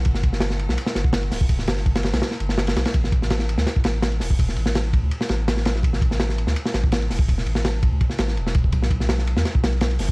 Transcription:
<<
  \new Staff \with { instrumentName = "Synth texture" } { \time 4/4 \key g \major \tempo 4 = 166 <fis' fis''>1~ | <fis' fis''>1 | r1 | r1 |
r1 | r1 | r1 | }
  \new Staff \with { instrumentName = "Sub bass" } { \clef bass \time 4/4 \key g \major g,,8 g,,4~ g,,16 b,,16 r8 g,,4 d,,8~ | d,,8 g,,4~ g,,16 b,,16 r8 g,,4 b,,16 r16 | a,,8 a,,4~ a,,16 d,16 r8 a,,4 e,,8~ | e,,8 a,,4~ a,,16 d,16 r8 a,,4. |
a,,8 a,,4~ a,,16 d,16 r8 a,,4 e,,8~ | e,,8 a,,4~ a,,16 d,16 r8 a,,8 e,,4 | b,,8 b,,4~ b,,16 e,16 r8 b,,4 fis,,8 | }
  \new DrumStaff \with { instrumentName = "Drums" } \drummode { \time 4/4 <bd cymr>16 sn16 <bd cymr>16 sn16 <cymr sn>16 sn16 cymr16 sn16 cymr16 sn16 <cymr sn>16 bd16 <cymr sn>16 cymr16 <hho sn>16 bd16 | <bd cymr>16 sn16 <cymr sn>16 sn16 <bd cymr>16 <cymr sn>16 <cymr sn>16 <cymr sn>16 <cymr sn>16 sn16 cymr16 sn16 <cymr sn>16 <cymr sn>16 <cymr sn>16 <cymr sn>16 | <bd cymr>16 sn16 <bd cymr>16 sn16 <cymr sn>16 sn16 cymr16 sn16 <cymr sn>16 bd16 <cymr sn>16 cymr16 <cymr sn>16 cymr16 <hho sn>16 bd16 | <bd cymr>16 sn16 cymr16 sn16 <cymr sn>8 <bd cymr>8 cymr16 sn16 <cymr sn>8 <cymr sn>16 sn16 <cymr sn>16 sn16 |
<bd cymr>16 sn16 <bd cymr>16 sn16 <cymr sn>16 sn16 cymr16 sn16 cymr16 sn16 <cymr sn>16 bd16 <cymr sn>16 cymr16 <hho sn>16 bd16 | <bd cymr>16 sn16 cymr16 sn16 <cymr sn>8 <bd cymr>8 <bd cymr>16 sn16 <cymr sn>16 sn16 cymr16 sn16 <bd cymr>16 bd16 | <bd cymr>16 sn16 <bd cymr>16 sn16 <cymr sn>16 sn16 cymr16 sn16 <cymr sn>16 bd16 <cymr sn>16 cymr16 <cymr sn>16 cymr16 <hho sn>16 bd16 | }
>>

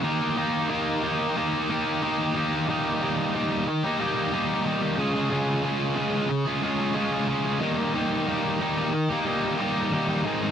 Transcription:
\new Staff \with { instrumentName = "Distorted electric guitar" } { \time 4/4 \key ees \dorian \tempo 4 = 91 <ees bes ees' g'>8 <ees bes ees' g'>8 <ees bes ees' g'>8 <ees bes ees' g'>8 <ees bes ees' g'>8 <ees bes ees' g'>8 <ees bes ees' g'>8 <ees bes ees' g'>8 | \key ees \mixolydian <ees g bes ees' g'>8 <g bes ees' g'>8 <ees g bes ees' g'>16 <bes ees' g'>8 <bes ees' g'>16 <g bes ees' g'>8 <g bes ees' g'>8 <ees g bes ees' g'>16 <bes ees' g'>16 <des aes des' f' aes'>16 <des' f' aes'>16 | <des aes des' f' aes'>8 <aes des' f' aes'>8 <des aes des' f' aes'>16 <des' f' aes'>8 <des' f' aes'>16 <aes des' f' aes'>8 <aes des' f' aes'>8 <des aes des' f' aes'>16 <des' f' aes'>16 <ees g bes ees' g'>16 <bes ees' g'>16 | <ees g bes ees' g'>8 <g bes ees' g'>8 <ees g bes ees' g'>16 <bes ees' g'>8 <bes ees' g'>16 <g bes ees' g'>8 <g bes ees' g'>8 <ees g bes ees' g'>16 <bes ees' g'>16 <aes, ees aes c' ees' aes'>16 <aes c' ees' aes'>16 | }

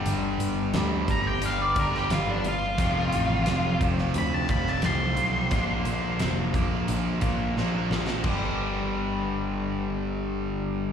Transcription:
<<
  \new Staff \with { instrumentName = "Lead electric guitar" } { \time 4/4 \key f \lydian \tempo 4 = 88 a''8 r4 bes''16 g''16 f''16 d''16 bes'16 g'16 f'16 d'16 f'8~ | f'4. r8 b''16 a''16 b''16 a''16 c'''4~ | c'''2 r2 | r1 | }
  \new Staff \with { instrumentName = "Overdriven electric guitar" } { \time 4/4 \key f \lydian <g, d g b d' g'>2 <g, d g b d' g'>8 <g, d g b d' g'>4 r8 | <f, c f a c' f'>2~ <f, c f a c' f'>8 <f, c f a c' f'>8 <f, c f a c' f'>4 | <bes, d bes d' f'>2~ <bes, d bes d' f'>8 <bes, d bes d' f'>8 <bes, d bes d' f'>4 | <g, d g b d' g'>1 | }
  \new Staff \with { instrumentName = "Overdriven electric guitar" } { \clef bass \time 4/4 \key f \lydian <g, d g>4 <g, d g>4. <g, d g>4 r8 | <f, c f>4. <f, c f>4. <f, c f>4 | <bes, f bes>4. <bes, f bes>4. <bes, f bes>4 | <g, d g>1 | }
  \new Staff \with { instrumentName = "Picked electric bass" } { \clef bass \time 4/4 \key f \lydian g,,8 g,,8 d,8 g,,8 g,,8 g,,8 g,,8 g,,8 | f,,8 a,,8 f,,8 f,,8 d,8 f,,8 c,8 b,,8 | bes,,8 bes,,8 f,,8 bes,,8 bes,,8 bes,,8 bes,,8 bes,,8 | g,,1 | }
  \new DrumStaff \with { instrumentName = "Drums" } \drummode { \time 4/4 hh8 hh8 <hh sn>8 <hh bd>8 hh8 <hh bd>16 sn16 <hh sn>8 hh8 | <hh bd>8 hh8 <hh sn>8 <hh bd>16 sn16 hh8 <hh bd>16 sn16 <hh sn>8 hh8 | <hh bd>8 hh8 <hh sn>8 <hh bd>8 hh8 <hh bd>8 sn8 sn16 sn16 | <cymc bd>4 r4 r4 r4 | }
>>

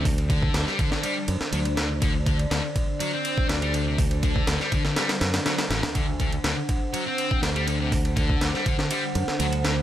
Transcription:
<<
  \new Staff \with { instrumentName = "Ambient pad" } { \time 4/4 \key c \mixolydian \tempo 4 = 122 << { d''1~ | d''1~ | d''1 | fis''1~ |
fis''1 | } \\ { <d d' c''>1~ | <d d' c''>1~ | <d d' c''>1~ | <d d' c''>1~ |
<d d' c''>1 | } >> }
  \new Staff \with { instrumentName = "Distorted electric guitar" } { \clef bass \time 4/4 \key c \mixolydian r8 d8. g16 d16 d16 g16 r8. fis16 r16 d16 r16 | d16 r16 d16 r16 d16 r8. fis16 c'8. d'16 g16 d16 c16 | r8 d8. g16 d16 d16 g16 r8. fis16 r16 d16 r16 | d16 r16 d16 r16 d16 r8. fis16 c'8. d'16 g16 d16 c16 |
r8 d8. g16 d16 d16 g16 r8. fis16 r16 d16 r16 | }
  \new Staff \with { instrumentName = "Fingered electric bass" } { \clef bass \time 4/4 \key c \mixolydian d,8. r16 d,16 r4 r16 fis,16 r16 d,4~ | d,8. r16 d,16 r4. r16 d,4~ | d,8. r16 d,16 r4 r16 fis,16 r8. a,,16 d,16~ | d,8. r16 d,16 r4. r16 d,4~ |
d,8. r16 d,16 r4 r16 fis,16 r16 d,4 | }
  \new DrumStaff \with { instrumentName = "Drums" } \drummode { \time 4/4 <hho bd>16 cymr16 <bd cymr>16 bd16 <cymr sn>16 sn16 <bd cymr>16 sn16 cymr8 cymr16 sn16 cymr16 cymr16 <cymr sn>8 | <bd cymr>8 <bd cymr>16 cymr16 <cymr sn>8 <bd cymr>8 cymr8 cymr16 bd16 <cymr sn>16 cymr16 cymr8 | <hho bd>16 cymr16 <bd cymr>16 bd16 <cymr sn>16 sn16 <bd cymr>16 sn16 <cymr sn>16 <cymr sn>16 <cymr sn>16 <cymr sn>16 <cymr sn>16 <cymr sn>16 <cymr sn>16 <cymr sn>16 | <bd cymr>8 <bd cymr>16 cymr16 <cymr sn>8 <bd cymr>8 cymr8 cymr16 bd16 <cymr sn>16 cymr16 cymr8 |
<hho bd>16 cymr16 <bd cymr>16 bd16 <cymr sn>16 sn16 <bd cymr>16 sn16 cymr8 cymr16 sn16 cymr16 cymr16 <cymr sn>8 | }
>>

